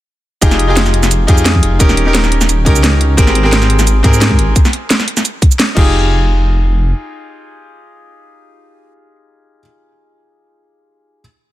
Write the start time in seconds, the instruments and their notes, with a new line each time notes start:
0.41 detuned saw bass F1, grand piano D#4 F4 G4 G#4, kick, closed hi-hat, shaker
0.51 snare, shaker
0.59 closed hi-hat
0.67 grand piano D#4 F4 G4 G#4
0.77 snare, closed hi-hat, shaker
0.86 snare, shaker
0.94 closed hi-hat
1.03 snare, shaker
1.11 closed hi-hat, shaker
1.27 detuned saw bass F2, grand piano D#4 F4 G4 G#4, kick, closed hi-hat, shaker
1.38 shaker
1.46 snare, closed hi-hat, shaker
1.55 kick
1.63 detuned saw bass F1, closed hi-hat
1.79 detuned saw bass D#1, grand piano C#4 D#4 G4 A#4, kick, closed hi-hat, shaker
1.89 snare, shaker
1.97 closed hi-hat
2.05 grand piano C#4 D#4 G4 A#4
2.15 snare, closed hi-hat, shaker
2.24 snare, shaker
2.32 closed hi-hat
2.41 snare, shaker
2.49 detuned saw bass D#1, closed hi-hat, shaker
2.65 detuned saw bass C#2, grand piano C#4 D#4 G4 A#4, kick, closed hi-hat, shaker
2.76 shaker
2.84 snare, closed hi-hat, shaker
3.01 closed hi-hat
3.17 detuned saw bass G#1, grand piano C4 G4 G#4 A#4, kick, closed hi-hat, shaker
3.27 snare, shaker
3.35 closed hi-hat
3.43 grand piano C4 G4 G#4 A#4
3.53 snare, closed hi-hat, shaker
3.62 snare, shaker
3.70 closed hi-hat
3.79 snare, shaker
3.87 closed hi-hat, shaker
4.03 detuned saw bass G#2, grand piano C4 G4 G#4 A#4, kick, closed hi-hat, shaker
4.13 shaker
4.21 snare, closed hi-hat, shaker
4.31 kick
4.39 detuned saw bass G#1, closed hi-hat
4.56 kick, closed hi-hat, shaker
4.65 snare, shaker
4.73 closed hi-hat
4.90 snare, closed hi-hat, shaker
5.00 snare, shaker
5.08 closed hi-hat
5.17 snare, shaker
5.25 closed hi-hat, shaker
5.42 kick, closed hi-hat, shaker
5.51 shaker
5.59 snare, closed hi-hat, shaker
5.75 detuned saw bass F1, grand piano D#4 F4 G4 G#4, kick, crash